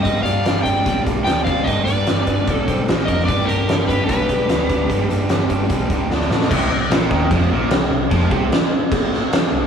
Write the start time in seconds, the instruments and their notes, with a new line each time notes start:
0.02 picked electric bass G1, overdriven electric guitar G2 D3 G3, lead electric guitar B4, electric slide guitar D#5, kick, closed hi-hat
0.23 picked electric bass G1, overdriven electric guitar G2 D3 G3, lead electric guitar D5, electric slide guitar F5, closed hi-hat
0.44 picked electric bass G1, overdriven electric guitar G2 D3 G3, snare, closed hi-hat
0.63 picked electric bass G1, overdriven electric guitar G2 D3 G3, lead electric guitar D5, electric slide guitar G5, kick, closed hi-hat
0.85 picked electric bass B1, overdriven electric guitar G2 D3 G3, kick, closed hi-hat
1.04 picked electric bass B1, overdriven electric guitar G2 D3 G3, kick, closed hi-hat
1.24 picked electric bass D2, overdriven electric guitar G2 D3 G3, lead electric guitar D5, electric slide guitar G5, snare, closed hi-hat
1.45 picked electric bass D2, overdriven electric guitar G2 D3 G3, lead electric guitar D5, electric slide guitar F5, kick, closed hi-hat
1.64 picked electric bass G1, overdriven electric guitar G2 D3 G3, lead electric guitar B4, electric slide guitar D#5, kick, closed hi-hat
1.84 picked electric bass G1, overdriven electric guitar G2 D3 G3, lead electric guitar B4, electric slide guitar D5, closed hi-hat
2.07 picked electric bass G1, overdriven electric guitar G2 D3 G3, snare, closed hi-hat
2.27 picked electric bass G1, overdriven electric guitar G2 D3 G3, kick, closed hi-hat
2.47 picked electric bass B1, overdriven electric guitar G2 D3 G3, kick, closed hi-hat
2.52 lead electric guitar A4
2.67 picked electric bass B1, overdriven electric guitar G2 D3 G3, electric slide guitar C5, kick, closed hi-hat
2.87 picked electric bass A#1, overdriven electric guitar A#2 F3 A#3, snare, closed hi-hat
3.05 picked electric bass F2, overdriven electric guitar A#2 F3 A#3, lead electric guitar A#4, electric slide guitar D#5, kick, closed hi-hat
3.20 snare
3.25 picked electric bass G1, overdriven electric guitar G2 D3 G3, lead electric guitar B4, electric slide guitar D5, kick, closed hi-hat
3.45 overdriven electric guitar G2 D3, lead electric guitar G4, electric slide guitar A#4, closed hi-hat
3.49 picked electric bass G1, overdriven electric guitar G3
3.67 picked electric bass G1, overdriven electric guitar G2 D3 G3, snare, closed hi-hat
3.88 picked electric bass G1, overdriven electric guitar G2 D3 G3, lead electric guitar G4, electric slide guitar B4, kick, closed hi-hat
4.06 picked electric bass B1, overdriven electric guitar G2 D3 G3, lead electric guitar G4, electric slide guitar B4, kick, closed hi-hat
4.29 picked electric bass B1, overdriven electric guitar G2 D3 G3, kick, closed hi-hat
4.48 picked electric bass D2, overdriven electric guitar G2 D3 G3, snare, closed hi-hat
4.68 picked electric bass D2, overdriven electric guitar G2 D3 G3, kick, closed hi-hat
4.89 picked electric bass G1, overdriven electric guitar G2 D3 G3, kick, closed hi-hat
5.09 picked electric bass G1, overdriven electric guitar G2 D3 G3, closed hi-hat
5.29 picked electric bass G1, overdriven electric guitar G2 D3 G3, snare, closed hi-hat
5.50 picked electric bass G1, overdriven electric guitar G2 D3 G3, kick, closed hi-hat
5.70 picked electric bass B1, overdriven electric guitar G2 D3 G3, kick, closed hi-hat
5.90 picked electric bass C#2, overdriven electric guitar G2 D3 G3, kick, closed hi-hat
6.10 picked electric bass D2, overdriven electric guitar D3 A3 D4, snare
6.21 snare
6.30 picked electric bass A2, overdriven electric guitar D3 A3 D4, snare
6.42 snare
6.51 picked electric bass C2, overdriven electric guitar C3, kick, crash
6.70 picked electric bass C2, overdriven electric guitar C3
6.90 picked electric bass A#1, overdriven electric guitar A#2, snare, crash
7.11 picked electric bass D#2, overdriven electric guitar D#3, kick
7.31 picked electric bass F2, overdriven electric guitar F3, kick, crash
7.51 picked electric bass A#1, overdriven electric guitar A#2
7.71 picked electric bass C2, overdriven electric guitar C3, snare, crash
7.91 picked electric bass C2, overdriven electric guitar C3
8.11 picked electric bass F2, overdriven electric guitar F3, kick, crash
8.31 picked electric bass C2, overdriven electric guitar C3, kick
8.52 snare, crash
8.92 kick, crash
9.13 snare
9.33 snare, crash
9.52 picked electric bass C2, overdriven electric guitar C3